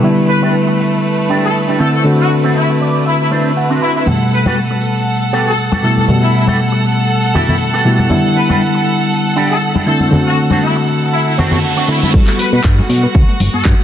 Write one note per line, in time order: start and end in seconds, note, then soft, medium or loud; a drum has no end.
0.00 1.77 D3 medium
0.00 1.77 G3 medium
0.00 4.08 A3 medium
0.00 1.78 B3 medium
0.00 4.08 B4 medium
0.05 1.78 E4 medium
0.29 0.38 B4 medium
0.42 0.54 D4 loud
0.42 0.54 E4 medium
0.42 0.54 G4 loud
0.42 0.50 B4 medium
0.67 muted clean electric guitar stroke medium
0.79 muted clean electric guitar stroke soft
1.29 1.49 D4 loud
1.29 1.49 E4 medium
1.29 1.49 G4 loud
1.43 1.54 A4 medium
1.68 1.79 D4 medium
1.68 1.80 E4 medium
1.68 1.80 G4 medium
1.79 2.02 D3 medium
1.79 2.02 A3 medium
1.79 2.30 C4 medium
1.79 2.03 C4 medium
1.79 2.31 D4 medium
1.79 2.03 E4 medium
1.79 2.31 F#4 medium
1.79 1.89 A4 medium
1.94 2.02 A4 medium
2.04 3.78 D3 medium
2.04 3.79 A3 medium
2.04 3.79 C4 medium
2.04 3.79 F#4 medium
2.19 2.30 F#4 medium
2.44 2.56 C4 loud
2.44 2.56 D4 medium
2.44 2.56 F#4 loud
2.56 2.68 E4 medium
2.69 muted clean electric guitar stroke medium
2.81 3.05 D5 medium
2.81 muted clean electric guitar stroke soft
3.06 3.15 E4 medium
3.06 3.31 E5 medium
3.20 3.28 E4 medium
3.31 3.51 C4 loud
3.31 3.51 D4 medium
3.31 3.51 E4 loud
3.57 3.80 F#5 medium
3.70 4.07 C4 medium
3.70 4.07 D4 medium
3.70 4.07 F#4 medium
3.82 3.91 E4 medium
3.82 4.05 B5 medium
3.96 4.03 E4 medium
4.06 5.80 B2 medium
4.06 5.81 G3 medium
4.06 5.81 A3 medium
4.06 12.15 A4 medium
4.06 12.12 F#5 medium
4.06 5.81 F#5 medium
4.06 low conga medium
4.06 cabasa soft
4.22 cabasa soft
4.33 4.41 B4 medium
4.33 cabasa medium
4.46 4.57 B3 loud
4.46 4.58 F#4 medium
4.46 4.58 G4 medium
4.46 4.58 A4 loud
4.46 4.54 B4 medium
4.46 high conga medium
4.46 cabasa soft
4.58 cabasa soft
4.70 muted clean electric guitar stroke medium
4.70 cabasa soft
4.82 muted clean electric guitar stroke soft
4.82 cabasa medium
4.96 cabasa soft
5.08 cabasa soft
5.22 cabasa soft
5.33 5.52 B3 medium
5.33 5.52 F#4 medium
5.33 5.53 G4 medium
5.33 5.53 A4 loud
5.33 cabasa medium
5.47 5.58 A4 medium
5.47 cabasa soft
5.59 cabasa soft
5.71 6.08 B3 medium
5.71 6.09 F#4 medium
5.71 6.09 G4 medium
5.71 6.09 A4 medium
5.71 high conga medium
5.71 cabasa soft
5.83 6.06 B2 medium
5.83 6.06 G3 medium
5.83 6.06 A3 medium
5.83 6.06 E4 medium
5.83 5.92 A4 medium
5.83 cabasa medium
5.97 6.05 A4 medium
5.97 high conga soft
5.97 cabasa soft
6.08 7.82 B2 medium
6.08 7.82 G3 medium
6.08 7.83 A3 medium
6.08 7.83 F#5 medium
6.08 low conga medium
6.08 cabasa soft
6.22 6.32 E4 medium
6.22 cabasa soft
6.33 6.43 E4 medium
6.33 cabasa medium
6.47 6.59 B3 medium
6.47 6.55 E4 medium
6.47 6.59 F#4 loud
6.47 6.59 G4 medium
6.47 6.59 A4 loud
6.47 high conga medium
6.47 cabasa soft
6.60 cabasa soft
6.72 muted clean electric guitar stroke medium
6.72 cabasa soft
6.84 muted clean electric guitar stroke soft
6.84 cabasa medium
6.98 cabasa soft
7.10 cabasa soft
7.24 cabasa soft
7.35 7.54 B3 medium
7.35 7.44 E4 medium
7.35 7.54 F#4 medium
7.35 7.54 G4 medium
7.35 7.54 A4 loud
7.35 low conga medium
7.35 cabasa medium
7.48 7.56 E4 medium
7.48 low conga medium
7.48 cabasa soft
7.60 cabasa soft
7.73 8.10 B3 medium
7.73 8.10 F#4 medium
7.73 8.10 G4 medium
7.73 8.11 A4 medium
7.73 cabasa soft
7.84 8.07 B2 medium
7.84 8.07 G3 medium
7.84 8.08 A3 medium
7.84 8.08 E4 medium
7.84 cabasa medium
7.98 high conga soft
7.98 cabasa soft
8.09 9.84 D3 medium
8.09 9.84 G3 medium
8.09 9.84 B3 medium
8.09 9.84 E4 medium
8.09 low conga medium
8.09 cabasa medium
8.25 cabasa soft
8.36 8.44 B4 medium
8.36 cabasa medium
8.49 8.61 D4 loud
8.49 8.61 E4 medium
8.49 8.61 G4 loud
8.49 8.57 B4 medium
8.49 high conga medium
8.49 cabasa soft
8.61 cabasa soft
8.74 muted clean electric guitar stroke medium
8.74 cabasa soft
8.86 muted clean electric guitar stroke soft
8.86 cabasa medium
9.01 cabasa soft
9.11 cabasa soft
9.25 cabasa soft
9.36 9.56 D4 loud
9.36 9.56 E4 loud
9.36 9.56 G4 loud
9.36 cabasa medium
9.50 9.61 A4 medium
9.50 cabasa soft
9.62 cabasa soft
9.75 9.86 D4 medium
9.75 9.87 E4 medium
9.75 9.87 G4 medium
9.75 high conga medium
9.75 cabasa soft
9.86 10.09 D3 medium
9.86 10.09 A3 medium
9.86 10.37 C4 medium
9.86 10.09 C4 medium
9.86 10.37 D4 medium
9.86 10.10 E4 medium
9.86 10.38 F#4 medium
9.86 9.96 A4 medium
9.86 cabasa medium
10.00 10.08 A4 medium
10.00 high conga medium
10.00 cabasa soft
10.11 11.85 D3 medium
10.11 11.85 A3 medium
10.11 11.86 C4 medium
10.11 11.86 F#4 medium
10.11 low conga medium
10.11 cabasa soft
10.26 10.36 F#4 medium
10.26 cabasa soft
10.37 cabasa medium
10.50 10.62 C4 loud
10.50 10.63 D4 medium
10.50 10.63 F#4 medium
10.50 high conga medium
10.50 cabasa soft
10.62 10.75 E4 medium
10.62 cabasa medium
10.76 muted clean electric guitar stroke medium
10.76 cabasa soft
10.87 muted clean electric guitar stroke soft
10.87 cabasa medium
11.02 cabasa soft
11.13 11.22 E4 medium
11.13 reverse cymbal medium
11.13 cabasa soft
11.27 11.34 E4 medium
11.27 cabasa soft
11.38 11.57 C4 loud
11.38 11.58 D4 loud
11.38 11.58 F#4 loud
11.38 low conga medium
11.38 cabasa medium
11.51 low conga medium
11.51 cabasa soft
11.63 cabasa soft
11.76 12.13 C4 medium
11.76 12.14 D4 medium
11.76 12.14 F#4 medium
11.76 cabasa soft
11.88 12.11 D3 medium
11.88 12.11 A3 medium
11.88 12.11 C4 medium
11.88 11.97 E4 medium
11.88 12.11 E4 medium
11.88 cabasa medium
12.02 12.10 E4 medium
12.02 high conga medium
12.02 cabasa soft
12.13 12.23 G2 loud
12.13 12.19 F#3 medium
12.13 13.84 G3 medium
12.13 13.84 B3 medium
12.13 13.84 F#4 medium
12.13 13.84 A4 medium
12.13 kick loud
12.13 crash loud
12.13 cabasa medium
12.27 12.32 A3 medium
12.27 clap soft
12.27 open hi-hat medium
12.27 cabasa soft
12.39 12.44 F#3 medium
12.39 12.48 B4 medium
12.39 open hi-hat loud
12.39 cabasa medium
12.53 12.60 B2 loud
12.53 12.55 B3 medium
12.53 12.60 B4 medium
12.53 cabasa soft
12.64 12.82 G2 loud
12.64 12.70 F#3 loud
12.64 kick loud
12.64 clap loud
12.64 cabasa medium
12.77 12.81 A3 medium
12.77 high conga loud
12.77 cabasa soft
12.89 13.07 B2 medium
12.89 12.95 F#3 medium
12.89 open hi-hat loud
12.89 cabasa medium
13.03 13.06 B3 loud
13.03 cabasa soft
13.15 13.24 D2 loud
13.15 13.20 F#3 medium
13.15 kick loud
13.15 cabasa medium
13.28 13.33 A3 medium
13.28 cabasa soft
13.40 13.49 G1 medium
13.40 13.45 F#3 medium
13.40 open hi-hat loud
13.40 high conga medium
13.40 cabasa loud
13.53 13.63 G2 soft
13.53 13.56 B3 medium
13.53 13.64 A4 medium
13.53 cabasa soft
13.65 13.74 G2 loud
13.65 13.71 F#3 loud
13.65 kick loud
13.65 clap loud
13.65 cabasa medium
13.79 13.82 A3 medium
13.79 cabasa soft